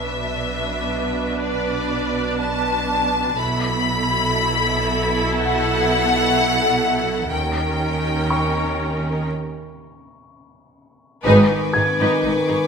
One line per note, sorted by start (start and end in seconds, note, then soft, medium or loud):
0.00 3.34 B1 soft
0.00 3.34 B2 soft
0.00 3.35 D4 soft
0.00 3.34 B4 soft
0.00 1.42 E5 medium
0.00 1.87 C#6 soft
1.42 2.38 D5 medium
2.39 3.36 A5 medium
3.38 7.28 B1 medium
3.38 7.28 B2 medium
3.38 7.28 E4 medium
3.38 7.28 A4 medium
3.38 5.35 B5 medium
5.33 7.31 F#5 loud
7.32 9.25 D#2 soft
7.32 9.25 D#3 soft
7.32 9.25 C#4 soft
7.32 9.25 A#4 soft
7.32 9.29 G5 medium
8.30 9.25 C#6 soft
11.24 11.48 G#1 medium
11.24 11.49 G#2 medium
11.24 12.67 D#3 medium
11.24 11.48 D#4 medium
11.24 11.47 B4 medium
11.24 12.67 B4 medium
11.24 12.67 G#5 medium
11.24 12.67 B5 soft
11.24 12.67 C#6 soft
11.24 12.67 D6 soft
11.49 11.58 G#2 soft
11.49 11.58 D#4 soft
11.49 11.57 B4 soft
11.73 11.83 G#1 soft
11.73 11.84 G#2 soft
11.73 11.82 D#4 soft
11.73 11.82 G#4 soft
11.73 12.67 G#6 soft
11.99 12.09 G#2 medium
11.99 12.22 D#4 medium
11.99 12.22 B4 medium
12.24 12.33 G#1 soft
12.24 12.32 G#2 soft
12.24 12.32 D#4 soft
12.24 12.32 B4 soft
12.47 12.58 G#2 soft
12.47 12.56 D#4 soft
12.47 12.55 G#4 soft